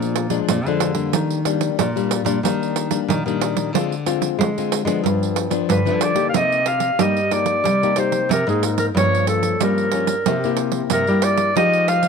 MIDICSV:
0, 0, Header, 1, 5, 480
1, 0, Start_track
1, 0, Key_signature, -3, "minor"
1, 0, Tempo, 651466
1, 837, Time_signature, 4, 2, 24, 8
1, 8902, End_track
2, 0, Start_track
2, 0, Title_t, "Clarinet"
2, 0, Program_c, 0, 71
2, 4208, Note_on_c, 0, 71, 78
2, 4441, Note_on_c, 0, 74, 82
2, 4452, Note_off_c, 0, 71, 0
2, 4628, Note_off_c, 0, 74, 0
2, 4635, Note_on_c, 0, 77, 65
2, 4684, Note_on_c, 0, 75, 90
2, 4695, Note_off_c, 0, 77, 0
2, 4916, Note_on_c, 0, 77, 81
2, 4927, Note_off_c, 0, 75, 0
2, 5170, Note_on_c, 0, 75, 75
2, 5181, Note_off_c, 0, 77, 0
2, 5401, Note_on_c, 0, 74, 88
2, 5412, Note_off_c, 0, 75, 0
2, 5881, Note_on_c, 0, 72, 76
2, 5892, Note_off_c, 0, 74, 0
2, 6120, Note_off_c, 0, 72, 0
2, 6131, Note_on_c, 0, 70, 84
2, 6237, Note_off_c, 0, 70, 0
2, 6258, Note_on_c, 0, 68, 72
2, 6362, Note_off_c, 0, 68, 0
2, 6476, Note_on_c, 0, 70, 78
2, 6531, Note_off_c, 0, 70, 0
2, 6613, Note_on_c, 0, 73, 91
2, 6830, Note_off_c, 0, 73, 0
2, 6838, Note_on_c, 0, 69, 73
2, 7062, Note_off_c, 0, 69, 0
2, 7100, Note_on_c, 0, 70, 79
2, 7822, Note_off_c, 0, 70, 0
2, 8050, Note_on_c, 0, 70, 95
2, 8278, Note_on_c, 0, 74, 88
2, 8289, Note_off_c, 0, 70, 0
2, 8516, Note_off_c, 0, 74, 0
2, 8520, Note_on_c, 0, 75, 96
2, 8755, Note_on_c, 0, 77, 94
2, 8766, Note_off_c, 0, 75, 0
2, 8902, Note_off_c, 0, 77, 0
2, 8902, End_track
3, 0, Start_track
3, 0, Title_t, "Nylon-string guitar"
3, 0, Program_c, 1, 24
3, 0, Note_on_c, 1, 46, 62
3, 0, Note_on_c, 1, 53, 63
3, 0, Note_on_c, 1, 56, 57
3, 0, Note_on_c, 1, 62, 69
3, 192, Note_off_c, 1, 53, 0
3, 194, Note_off_c, 1, 56, 0
3, 195, Note_off_c, 1, 62, 0
3, 221, Note_on_c, 1, 53, 59
3, 224, Note_on_c, 1, 56, 67
3, 231, Note_on_c, 1, 62, 76
3, 333, Note_off_c, 1, 46, 0
3, 367, Note_on_c, 1, 41, 54
3, 431, Note_off_c, 1, 53, 0
3, 432, Note_off_c, 1, 56, 0
3, 436, Note_off_c, 1, 62, 0
3, 494, Note_on_c, 1, 53, 65
3, 497, Note_on_c, 1, 56, 69
3, 501, Note_on_c, 1, 62, 69
3, 687, Note_off_c, 1, 53, 0
3, 688, Note_off_c, 1, 56, 0
3, 691, Note_off_c, 1, 62, 0
3, 697, Note_on_c, 1, 55, 62
3, 703, Note_on_c, 1, 58, 60
3, 703, Note_on_c, 1, 62, 65
3, 818, Note_off_c, 1, 41, 0
3, 848, Note_on_c, 1, 51, 63
3, 1029, Note_off_c, 1, 55, 0
3, 1030, Note_off_c, 1, 58, 0
3, 1032, Note_off_c, 1, 62, 0
3, 1070, Note_on_c, 1, 55, 52
3, 1076, Note_on_c, 1, 58, 55
3, 1080, Note_on_c, 1, 62, 64
3, 1298, Note_off_c, 1, 51, 0
3, 1320, Note_on_c, 1, 46, 58
3, 1395, Note_off_c, 1, 55, 0
3, 1399, Note_off_c, 1, 58, 0
3, 1400, Note_off_c, 1, 62, 0
3, 1444, Note_on_c, 1, 55, 61
3, 1449, Note_on_c, 1, 58, 67
3, 1452, Note_on_c, 1, 62, 59
3, 1642, Note_off_c, 1, 55, 0
3, 1645, Note_off_c, 1, 58, 0
3, 1646, Note_off_c, 1, 62, 0
3, 1662, Note_on_c, 1, 55, 61
3, 1665, Note_on_c, 1, 58, 65
3, 1669, Note_on_c, 1, 62, 66
3, 1751, Note_off_c, 1, 55, 0
3, 1753, Note_off_c, 1, 58, 0
3, 1755, Note_off_c, 1, 62, 0
3, 1775, Note_off_c, 1, 46, 0
3, 1801, Note_on_c, 1, 51, 55
3, 1801, Note_on_c, 1, 55, 58
3, 1805, Note_on_c, 1, 58, 55
3, 1805, Note_on_c, 1, 62, 60
3, 2121, Note_off_c, 1, 55, 0
3, 2122, Note_off_c, 1, 58, 0
3, 2123, Note_off_c, 1, 62, 0
3, 2145, Note_on_c, 1, 55, 59
3, 2149, Note_on_c, 1, 62, 63
3, 2150, Note_on_c, 1, 58, 65
3, 2256, Note_off_c, 1, 51, 0
3, 2275, Note_on_c, 1, 46, 54
3, 2353, Note_off_c, 1, 55, 0
3, 2354, Note_off_c, 1, 58, 0
3, 2355, Note_off_c, 1, 62, 0
3, 2404, Note_on_c, 1, 55, 58
3, 2408, Note_on_c, 1, 58, 64
3, 2411, Note_on_c, 1, 62, 68
3, 2723, Note_off_c, 1, 55, 0
3, 2724, Note_off_c, 1, 58, 0
3, 2726, Note_off_c, 1, 62, 0
3, 2732, Note_off_c, 1, 46, 0
3, 2757, Note_on_c, 1, 56, 60
3, 2758, Note_on_c, 1, 50, 62
3, 2761, Note_on_c, 1, 60, 61
3, 2767, Note_on_c, 1, 65, 66
3, 2898, Note_off_c, 1, 56, 0
3, 2901, Note_off_c, 1, 60, 0
3, 2902, Note_off_c, 1, 65, 0
3, 2991, Note_on_c, 1, 56, 52
3, 2996, Note_on_c, 1, 60, 63
3, 2998, Note_on_c, 1, 65, 70
3, 3214, Note_off_c, 1, 50, 0
3, 3239, Note_on_c, 1, 50, 59
3, 3316, Note_off_c, 1, 56, 0
3, 3318, Note_off_c, 1, 60, 0
3, 3319, Note_off_c, 1, 65, 0
3, 3374, Note_on_c, 1, 56, 57
3, 3375, Note_on_c, 1, 60, 64
3, 3380, Note_on_c, 1, 65, 58
3, 3567, Note_off_c, 1, 60, 0
3, 3568, Note_off_c, 1, 56, 0
3, 3570, Note_off_c, 1, 65, 0
3, 3581, Note_on_c, 1, 53, 59
3, 3584, Note_on_c, 1, 59, 62
3, 3589, Note_on_c, 1, 62, 68
3, 3695, Note_off_c, 1, 50, 0
3, 3722, Note_on_c, 1, 43, 60
3, 4031, Note_off_c, 1, 53, 0
3, 4033, Note_off_c, 1, 59, 0
3, 4035, Note_off_c, 1, 62, 0
3, 4057, Note_on_c, 1, 53, 68
3, 4061, Note_on_c, 1, 59, 65
3, 4067, Note_on_c, 1, 62, 70
3, 4176, Note_off_c, 1, 43, 0
3, 4198, Note_on_c, 1, 50, 62
3, 4269, Note_off_c, 1, 53, 0
3, 4270, Note_off_c, 1, 59, 0
3, 4274, Note_off_c, 1, 62, 0
3, 4314, Note_on_c, 1, 53, 59
3, 4319, Note_on_c, 1, 59, 65
3, 4319, Note_on_c, 1, 62, 68
3, 4518, Note_off_c, 1, 53, 0
3, 4519, Note_off_c, 1, 59, 0
3, 4520, Note_off_c, 1, 62, 0
3, 4531, Note_on_c, 1, 58, 55
3, 4534, Note_on_c, 1, 63, 55
3, 4538, Note_on_c, 1, 67, 63
3, 4654, Note_off_c, 1, 50, 0
3, 4674, Note_on_c, 1, 48, 56
3, 4866, Note_off_c, 1, 58, 0
3, 4868, Note_off_c, 1, 63, 0
3, 4869, Note_off_c, 1, 67, 0
3, 5132, Note_off_c, 1, 48, 0
3, 5156, Note_on_c, 1, 43, 58
3, 5160, Note_on_c, 1, 58, 58
3, 5161, Note_on_c, 1, 63, 48
3, 5166, Note_on_c, 1, 67, 60
3, 5299, Note_off_c, 1, 63, 0
3, 5300, Note_off_c, 1, 58, 0
3, 5303, Note_off_c, 1, 67, 0
3, 5387, Note_on_c, 1, 58, 53
3, 5389, Note_on_c, 1, 63, 54
3, 5393, Note_on_c, 1, 67, 54
3, 5614, Note_off_c, 1, 43, 0
3, 5619, Note_off_c, 1, 58, 0
3, 5619, Note_off_c, 1, 63, 0
3, 5620, Note_off_c, 1, 67, 0
3, 5644, Note_on_c, 1, 48, 57
3, 5769, Note_on_c, 1, 58, 59
3, 5773, Note_on_c, 1, 63, 59
3, 5775, Note_on_c, 1, 67, 72
3, 5845, Note_off_c, 1, 58, 0
3, 5847, Note_off_c, 1, 63, 0
3, 5848, Note_off_c, 1, 67, 0
3, 5873, Note_on_c, 1, 58, 51
3, 5876, Note_on_c, 1, 63, 56
3, 5883, Note_on_c, 1, 67, 56
3, 6097, Note_off_c, 1, 48, 0
3, 6101, Note_off_c, 1, 58, 0
3, 6103, Note_off_c, 1, 63, 0
3, 6105, Note_off_c, 1, 67, 0
3, 6244, Note_on_c, 1, 58, 64
3, 6249, Note_on_c, 1, 63, 57
3, 6563, Note_off_c, 1, 58, 0
3, 6566, Note_off_c, 1, 63, 0
3, 6608, Note_on_c, 1, 53, 57
3, 6609, Note_on_c, 1, 43, 59
3, 6610, Note_on_c, 1, 58, 55
3, 6613, Note_on_c, 1, 61, 68
3, 7045, Note_off_c, 1, 53, 0
3, 7047, Note_off_c, 1, 58, 0
3, 7047, Note_off_c, 1, 61, 0
3, 7060, Note_off_c, 1, 43, 0
3, 7088, Note_on_c, 1, 43, 60
3, 7091, Note_on_c, 1, 53, 50
3, 7093, Note_on_c, 1, 61, 59
3, 7097, Note_on_c, 1, 58, 57
3, 7286, Note_off_c, 1, 53, 0
3, 7287, Note_off_c, 1, 58, 0
3, 7288, Note_off_c, 1, 61, 0
3, 7312, Note_on_c, 1, 53, 49
3, 7315, Note_on_c, 1, 58, 46
3, 7320, Note_on_c, 1, 61, 59
3, 7471, Note_off_c, 1, 53, 0
3, 7472, Note_off_c, 1, 58, 0
3, 7475, Note_off_c, 1, 61, 0
3, 7541, Note_off_c, 1, 43, 0
3, 7563, Note_on_c, 1, 48, 55
3, 7565, Note_on_c, 1, 58, 51
3, 7568, Note_on_c, 1, 64, 59
3, 7572, Note_on_c, 1, 67, 62
3, 7633, Note_off_c, 1, 58, 0
3, 7636, Note_off_c, 1, 64, 0
3, 7638, Note_off_c, 1, 67, 0
3, 7697, Note_on_c, 1, 58, 69
3, 7699, Note_on_c, 1, 64, 62
3, 7703, Note_on_c, 1, 67, 65
3, 8018, Note_off_c, 1, 48, 0
3, 8053, Note_on_c, 1, 43, 57
3, 8130, Note_off_c, 1, 58, 0
3, 8132, Note_off_c, 1, 64, 0
3, 8132, Note_off_c, 1, 67, 0
3, 8174, Note_on_c, 1, 58, 60
3, 8179, Note_on_c, 1, 64, 62
3, 8181, Note_on_c, 1, 67, 62
3, 8489, Note_off_c, 1, 58, 0
3, 8491, Note_off_c, 1, 64, 0
3, 8492, Note_off_c, 1, 67, 0
3, 8503, Note_off_c, 1, 43, 0
3, 8517, Note_on_c, 1, 56, 62
3, 8520, Note_on_c, 1, 53, 57
3, 8524, Note_on_c, 1, 63, 60
3, 8527, Note_on_c, 1, 67, 69
3, 8828, Note_off_c, 1, 56, 0
3, 8830, Note_off_c, 1, 63, 0
3, 8833, Note_off_c, 1, 67, 0
3, 8902, Note_off_c, 1, 53, 0
3, 8902, End_track
4, 0, Start_track
4, 0, Title_t, "Nylon-string guitar"
4, 0, Program_c, 2, 24
4, 0, Note_on_c, 2, 46, 90
4, 286, Note_off_c, 2, 46, 0
4, 363, Note_on_c, 2, 46, 99
4, 485, Note_off_c, 2, 46, 0
4, 485, Note_on_c, 2, 50, 92
4, 840, Note_off_c, 2, 50, 0
4, 840, Note_on_c, 2, 51, 94
4, 1247, Note_off_c, 2, 51, 0
4, 1316, Note_on_c, 2, 46, 97
4, 1623, Note_off_c, 2, 46, 0
4, 1655, Note_on_c, 2, 46, 84
4, 1766, Note_off_c, 2, 46, 0
4, 1792, Note_on_c, 2, 51, 81
4, 2203, Note_off_c, 2, 51, 0
4, 2273, Note_on_c, 2, 51, 99
4, 2377, Note_off_c, 2, 51, 0
4, 2400, Note_on_c, 2, 51, 89
4, 2745, Note_off_c, 2, 51, 0
4, 2745, Note_on_c, 2, 50, 100
4, 3158, Note_off_c, 2, 50, 0
4, 3232, Note_on_c, 2, 56, 96
4, 3540, Note_off_c, 2, 56, 0
4, 3573, Note_on_c, 2, 56, 88
4, 3685, Note_off_c, 2, 56, 0
4, 3710, Note_on_c, 2, 43, 86
4, 4121, Note_off_c, 2, 43, 0
4, 4191, Note_on_c, 2, 43, 97
4, 4315, Note_off_c, 2, 43, 0
4, 4320, Note_on_c, 2, 50, 87
4, 4625, Note_off_c, 2, 50, 0
4, 4669, Note_on_c, 2, 48, 87
4, 5081, Note_off_c, 2, 48, 0
4, 5150, Note_on_c, 2, 55, 83
4, 5562, Note_off_c, 2, 55, 0
4, 5628, Note_on_c, 2, 55, 92
4, 6040, Note_off_c, 2, 55, 0
4, 6110, Note_on_c, 2, 48, 87
4, 6216, Note_off_c, 2, 48, 0
4, 6239, Note_on_c, 2, 44, 88
4, 6545, Note_off_c, 2, 44, 0
4, 6591, Note_on_c, 2, 43, 84
4, 7003, Note_off_c, 2, 43, 0
4, 7074, Note_on_c, 2, 55, 86
4, 7485, Note_off_c, 2, 55, 0
4, 7557, Note_on_c, 2, 48, 84
4, 7967, Note_off_c, 2, 48, 0
4, 8036, Note_on_c, 2, 48, 99
4, 8139, Note_off_c, 2, 48, 0
4, 8165, Note_on_c, 2, 55, 86
4, 8469, Note_off_c, 2, 55, 0
4, 8514, Note_on_c, 2, 53, 84
4, 8902, Note_off_c, 2, 53, 0
4, 8902, End_track
5, 0, Start_track
5, 0, Title_t, "Pandeiro"
5, 17, Note_on_c, 9, 54, 33
5, 91, Note_off_c, 9, 54, 0
5, 115, Note_on_c, 9, 54, 69
5, 189, Note_off_c, 9, 54, 0
5, 222, Note_on_c, 9, 54, 54
5, 295, Note_off_c, 9, 54, 0
5, 358, Note_on_c, 9, 54, 84
5, 431, Note_off_c, 9, 54, 0
5, 489, Note_on_c, 9, 54, 34
5, 563, Note_off_c, 9, 54, 0
5, 592, Note_on_c, 9, 54, 74
5, 666, Note_off_c, 9, 54, 0
5, 697, Note_on_c, 9, 54, 53
5, 771, Note_off_c, 9, 54, 0
5, 835, Note_on_c, 9, 54, 81
5, 908, Note_off_c, 9, 54, 0
5, 962, Note_on_c, 9, 54, 39
5, 1035, Note_off_c, 9, 54, 0
5, 1071, Note_on_c, 9, 54, 66
5, 1145, Note_off_c, 9, 54, 0
5, 1185, Note_on_c, 9, 54, 56
5, 1259, Note_off_c, 9, 54, 0
5, 1318, Note_on_c, 9, 54, 86
5, 1392, Note_off_c, 9, 54, 0
5, 1450, Note_on_c, 9, 54, 34
5, 1524, Note_off_c, 9, 54, 0
5, 1554, Note_on_c, 9, 54, 74
5, 1628, Note_off_c, 9, 54, 0
5, 1665, Note_on_c, 9, 54, 63
5, 1738, Note_off_c, 9, 54, 0
5, 1805, Note_on_c, 9, 54, 76
5, 1879, Note_off_c, 9, 54, 0
5, 1936, Note_on_c, 9, 54, 34
5, 2009, Note_off_c, 9, 54, 0
5, 2033, Note_on_c, 9, 54, 66
5, 2107, Note_off_c, 9, 54, 0
5, 2142, Note_on_c, 9, 54, 61
5, 2216, Note_off_c, 9, 54, 0
5, 2284, Note_on_c, 9, 54, 78
5, 2358, Note_off_c, 9, 54, 0
5, 2415, Note_on_c, 9, 54, 36
5, 2488, Note_off_c, 9, 54, 0
5, 2516, Note_on_c, 9, 54, 75
5, 2590, Note_off_c, 9, 54, 0
5, 2628, Note_on_c, 9, 54, 61
5, 2701, Note_off_c, 9, 54, 0
5, 2763, Note_on_c, 9, 54, 84
5, 2837, Note_off_c, 9, 54, 0
5, 2890, Note_on_c, 9, 54, 40
5, 2964, Note_off_c, 9, 54, 0
5, 2995, Note_on_c, 9, 54, 61
5, 3068, Note_off_c, 9, 54, 0
5, 3108, Note_on_c, 9, 54, 57
5, 3182, Note_off_c, 9, 54, 0
5, 3248, Note_on_c, 9, 54, 79
5, 3321, Note_off_c, 9, 54, 0
5, 3373, Note_on_c, 9, 54, 36
5, 3447, Note_off_c, 9, 54, 0
5, 3478, Note_on_c, 9, 54, 73
5, 3552, Note_off_c, 9, 54, 0
5, 3591, Note_on_c, 9, 54, 60
5, 3665, Note_off_c, 9, 54, 0
5, 3727, Note_on_c, 9, 54, 75
5, 3801, Note_off_c, 9, 54, 0
5, 3852, Note_on_c, 9, 54, 37
5, 3926, Note_off_c, 9, 54, 0
5, 3950, Note_on_c, 9, 54, 67
5, 4024, Note_off_c, 9, 54, 0
5, 4060, Note_on_c, 9, 54, 51
5, 4134, Note_off_c, 9, 54, 0
5, 4197, Note_on_c, 9, 54, 74
5, 4271, Note_off_c, 9, 54, 0
5, 4324, Note_on_c, 9, 54, 33
5, 4398, Note_off_c, 9, 54, 0
5, 4427, Note_on_c, 9, 54, 74
5, 4501, Note_off_c, 9, 54, 0
5, 4536, Note_on_c, 9, 54, 53
5, 4609, Note_off_c, 9, 54, 0
5, 4673, Note_on_c, 9, 54, 82
5, 4747, Note_off_c, 9, 54, 0
5, 4806, Note_on_c, 9, 54, 35
5, 4880, Note_off_c, 9, 54, 0
5, 4906, Note_on_c, 9, 54, 64
5, 4980, Note_off_c, 9, 54, 0
5, 5011, Note_on_c, 9, 54, 54
5, 5085, Note_off_c, 9, 54, 0
5, 5151, Note_on_c, 9, 54, 82
5, 5225, Note_off_c, 9, 54, 0
5, 5281, Note_on_c, 9, 54, 32
5, 5354, Note_off_c, 9, 54, 0
5, 5389, Note_on_c, 9, 54, 60
5, 5463, Note_off_c, 9, 54, 0
5, 5495, Note_on_c, 9, 54, 58
5, 5569, Note_off_c, 9, 54, 0
5, 5639, Note_on_c, 9, 54, 69
5, 5712, Note_off_c, 9, 54, 0
5, 5770, Note_on_c, 9, 54, 35
5, 5844, Note_off_c, 9, 54, 0
5, 5865, Note_on_c, 9, 54, 66
5, 5939, Note_off_c, 9, 54, 0
5, 5984, Note_on_c, 9, 54, 55
5, 6058, Note_off_c, 9, 54, 0
5, 6122, Note_on_c, 9, 54, 81
5, 6196, Note_off_c, 9, 54, 0
5, 6253, Note_on_c, 9, 54, 33
5, 6327, Note_off_c, 9, 54, 0
5, 6358, Note_on_c, 9, 54, 73
5, 6432, Note_off_c, 9, 54, 0
5, 6468, Note_on_c, 9, 54, 58
5, 6541, Note_off_c, 9, 54, 0
5, 6609, Note_on_c, 9, 54, 81
5, 6683, Note_off_c, 9, 54, 0
5, 6738, Note_on_c, 9, 54, 32
5, 6812, Note_off_c, 9, 54, 0
5, 6832, Note_on_c, 9, 54, 60
5, 6906, Note_off_c, 9, 54, 0
5, 6947, Note_on_c, 9, 54, 55
5, 7020, Note_off_c, 9, 54, 0
5, 7077, Note_on_c, 9, 54, 79
5, 7151, Note_off_c, 9, 54, 0
5, 7204, Note_on_c, 9, 54, 35
5, 7277, Note_off_c, 9, 54, 0
5, 7305, Note_on_c, 9, 54, 61
5, 7379, Note_off_c, 9, 54, 0
5, 7422, Note_on_c, 9, 54, 62
5, 7496, Note_off_c, 9, 54, 0
5, 7558, Note_on_c, 9, 54, 81
5, 7632, Note_off_c, 9, 54, 0
5, 7690, Note_on_c, 9, 54, 34
5, 7763, Note_off_c, 9, 54, 0
5, 7785, Note_on_c, 9, 54, 62
5, 7859, Note_off_c, 9, 54, 0
5, 7896, Note_on_c, 9, 54, 53
5, 7969, Note_off_c, 9, 54, 0
5, 8030, Note_on_c, 9, 54, 79
5, 8103, Note_off_c, 9, 54, 0
5, 8158, Note_on_c, 9, 54, 32
5, 8232, Note_off_c, 9, 54, 0
5, 8267, Note_on_c, 9, 54, 73
5, 8340, Note_off_c, 9, 54, 0
5, 8381, Note_on_c, 9, 54, 60
5, 8454, Note_off_c, 9, 54, 0
5, 8522, Note_on_c, 9, 54, 77
5, 8595, Note_off_c, 9, 54, 0
5, 8646, Note_on_c, 9, 54, 34
5, 8720, Note_off_c, 9, 54, 0
5, 8754, Note_on_c, 9, 54, 65
5, 8828, Note_off_c, 9, 54, 0
5, 8862, Note_on_c, 9, 54, 52
5, 8902, Note_off_c, 9, 54, 0
5, 8902, End_track
0, 0, End_of_file